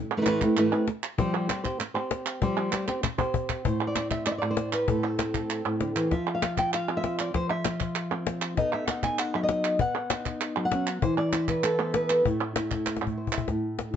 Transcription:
0.17 E3 A3 C4 E4 B4
0.21 E3 A3 C4 E4 B4
0.26 A2 E3 A3 C4 E4 B4, cajon slap, clap
0.41 A3 C4 E4 B4, cajon bass, clap
0.57 A2 E3 A3 C4 E4 B4, clap
0.72 A3 C4 E4 B4, cajon slap
0.88 muted nylon-string guitar stroke, cajon slap
1.03 clap
1.18 F3 G3 C4 G4 C5, cajon bass
1.49 G3 C4 G4 C5, cajon slap, clap
1.64 C4 G4 C5, cajon bass, clap
1.80 muted nylon-string guitar stroke, clap
1.94 C4 G4 C5
2.11 cajon slap
2.26 clap
2.42 F3 G3 C4 G4 C5, cajon bass
2.72 G3 C4 G4 C5, cajon slap, clap
2.87 C4 G4 C5, cajon slap, clap
3.03 muted nylon-string guitar stroke, cajon bass, clap
3.18 C4 G4 C5, cajon bass
3.34 cajon bass
3.49 cajon bass, clap
3.65 A2 C5, cajon bass
3.87 D5
3.96 C4, cajon slap, clap
4.11 E5, cajon bass, clap
4.26 D5, clap
4.31 E5
4.38 A2 D5
4.51 C5
4.57 cajon slap
4.73 B4, clap
4.88 A2 A4, cajon bass
5.03 C5
5.19 C4, cajon slap, clap
5.34 A4, cajon bass, clap
5.50 clap
5.65 A2
5.80 D3, cajon slap
5.96 E3, clap
6.11 F3 F4 E5, cajon bass, cajon slap
6.35 F5
6.42 F4, cajon slap, clap
6.57 G5, cajon bass, clap
6.73 F5, clap
6.88 C4
6.97 E5
7.04 F4, cajon slap
7.19 D5, clap
7.34 F3 C5, cajon bass, cajon slap
7.50 E5
7.65 F4, cajon slap, clap
7.80 cajon bass, clap
7.95 clap
8.11 C4, cajon slap
8.27 cajon slap
8.42 cajon slap, clap
8.57 B3 D#4 A4 D#5, cajon bass
8.74 E5
8.88 D#4 F#5, cajon slap, clap
9.03 G#5, cajon bass, clap
9.19 F#5, clap
9.34 F#3 E5
9.43 D#5
9.49 cajon slap
9.64 clap
9.79 B3 F#5, cajon bass
10.10 D#4, cajon slap, clap
10.26 cajon bass, clap
10.41 clap
10.57 F#3, cajon slap
10.65 F#5
10.72 C#4, cajon slap
10.87 clap
11.02 E3 C5, cajon bass
11.18 D5
11.33 E4 C5, cajon slap, clap
11.48 B4, cajon bass, clap
11.64 A4, clap
11.79 B3 C5
11.94 B4, cajon slap
12.10 A4, clap
12.25 A2 E4, cajon bass
12.56 E4, cajon slap, clap
12.71 E4, cajon bass, clap
12.86 cajon slap, clap
12.96 cajon slap
13.02 A2
13.07 cajon bass
13.17 C5
13.27 cajon bass
13.32 E5, clap
13.38 cajon bass
13.48 A2, cajon bass, cajon slap
13.79 cajon slap

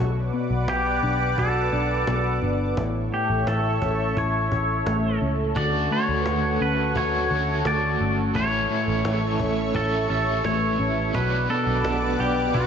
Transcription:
Already playing: B2
0.00 B1 F#4 B4 D5 F#5 D6
0.33 B3, cajon slap
0.50 B1
0.68 B1 G4, cajon slap
1.03 B1 D4
1.38 B1 F#4 A4, cajon bass
1.72 B1 D4
2.07 B1 B3, cajon slap
2.42 G1 D4, cajon slap
2.77 A1 A2 E4 A4 C#5 E5 C#6, cajon bass
3.12 A3 G4, cajon slap
3.30 A1
3.46 A1 E4 A4, cajon slap
3.81 A1 C#4, cajon bass
4.17 A1 E4 C#5, cajon bass
4.52 A1 C#4, cajon bass
4.86 A1 A3, cajon slap
5.21 C#2 C#4, cajon slap
5.55 D2 D3 A3 F#4 D5 F#5 C#6, cajon bass
5.61 F#4
5.90 A3 C#5, cajon slap
6.09 D2
6.19 B4
6.25 D2 F#4, cajon slap
6.60 D2 C#4 B4
6.94 D2 D3 A3 C#4 F#4 C#5, cajon bass
6.99 F#4
7.29 D2 F#4, cajon slap
7.34 A3
7.65 D2 A3 D5, cajon slap
8.00 G1 C#4, cajon slap
8.34 A1 A2 E3 A3 E4 C#5 E5 C#6, cajon bass
8.38 C#4 E4
8.70 A3, cajon slap
8.88 A1
9.05 A1 E4, cajon slap
9.27 A4
9.39 A1 C#4, cajon bass
9.74 A1 E3 A3 C#4 E4 A4, cajon bass
9.78 E4
10.09 A1 C#4 E4 A4
10.13 A3
10.44 A1 A3 C#5, cajon slap
10.53 B4
10.79 A1 C#4, cajon slap
11.13 B1 B2 B3 F#4 B4 D5 F#5 D6, cajon bass
11.18 D4
11.49 B3 A4
11.67 B1
11.84 B1, cajon slap
12.19 B1 D4 G4
12.53 B1 F#3 B3 D4 F#4, cajon bass

